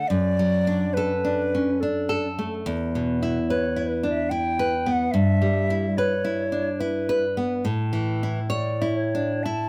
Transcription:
0.08 2.61 F#2 medium
0.08 0.95 D5 loud
0.39 0.83 F#3 soft
0.67 1.12 D4 medium
0.94 1.41 A4 medium
0.94 1.82 B4 medium
1.25 1.69 D4 medium
1.55 1.81 C#4 soft
1.80 2.26 D4 soft
1.80 2.65 A4 medium
2.09 2.53 A4 medium
2.39 2.65 A3 soft
2.66 5.08 E2 medium
2.95 3.38 B2 soft
3.23 3.65 E4 medium
3.48 3.92 B4 medium
3.48 3.89 C#5 medium
3.76 4.19 E4 medium
3.87 4.08 B4 medium
4.03 4.30 D4 soft
4.10 4.31 E5 medium
4.30 4.73 E4 medium
4.30 4.93 G5 medium
4.59 5.01 B4 medium
4.86 5.12 B3 medium
4.92 5.13 F#5 medium
5.11 7.61 G2 medium
5.11 5.99 E5 loud
5.42 5.85 G3 soft
5.70 6.14 E4 medium
5.97 6.42 B4 medium
5.97 6.81 C#5 medium
6.25 6.69 E4 medium
6.52 6.80 D4 soft
6.80 7.25 E4 medium
6.80 7.64 B4 medium
7.09 7.53 B4 medium
7.37 7.64 B3 medium
7.65 9.69 A2 medium
7.93 8.39 E3 soft
8.23 8.69 E4 soft
8.50 9.00 C#5 medium
8.50 8.98 D5 medium
8.82 9.32 E4 medium
8.97 9.45 C#5 medium
9.15 9.44 D4 soft
9.44 9.69 E4 medium
9.44 9.69 A5 medium

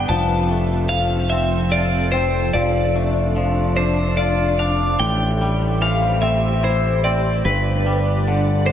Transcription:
0.09 2.51 F1 soft
0.09 0.90 F3 medium
0.09 4.97 F3 medium
0.09 2.53 C4 medium
0.09 2.52 A4 medium
0.09 0.87 A5 medium
0.51 2.95 A3 soft
0.89 2.54 F3 soft
0.89 1.29 F5 medium
1.30 2.12 C4 soft
1.30 1.73 E5 medium
1.72 2.55 F4 soft
1.72 2.11 D5 medium
2.12 2.55 C4 soft
2.12 2.53 C5 medium
2.53 4.96 F1 medium
2.53 3.35 F3 medium
2.53 4.97 D4 medium
2.53 4.97 A4 medium
2.53 3.76 D5 medium
2.96 5.00 A3 soft
3.36 5.00 F3 soft
3.77 4.58 D4 soft
3.77 4.15 C5 medium
4.17 5.00 F4 soft
4.17 4.60 D5 medium
4.59 5.00 D4 soft
4.59 4.99 F5 medium
5.00 7.41 A1 medium
5.00 7.05 A2 soft
5.00 7.43 A3 medium
5.00 7.43 G4 medium
5.00 7.43 C5 medium
5.00 5.82 G5 medium
5.41 7.46 G3 soft
5.82 7.45 E3 soft
5.82 6.20 F5 medium
6.22 7.03 C4 soft
6.22 6.64 E5 medium
6.63 7.45 E4 soft
6.63 7.04 C5 medium
7.04 7.45 C4 soft
7.04 7.45 D5 medium
7.45 8.72 G1 medium
7.45 8.72 G2 medium
7.45 8.72 G3 medium
7.45 8.72 D4 medium
7.45 8.66 B4 medium
7.45 8.72 D5 medium
7.86 8.72 G3 soft
8.28 8.72 D3 soft
8.66 8.72 C5 medium

